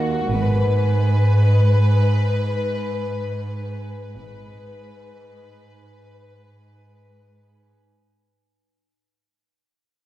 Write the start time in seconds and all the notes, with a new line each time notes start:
Already playing: D#2 D#4 F#4 A#4 F#5
0.29 G#1 G#2 D#4 B4 G#5
4.14 G#1 G#2 D#4 B4 G#5